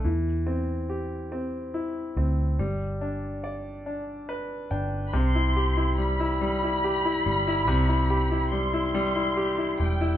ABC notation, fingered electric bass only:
X:1
M:6/8
L:1/8
Q:3/8=47
K:C
V:1 name="Fingered electric bass" clef=bass
E,,4- E,, D,, | G,,,4- G,,, G,,, | C,,4- C,, G,,, | C,,4- C,, E,,, |]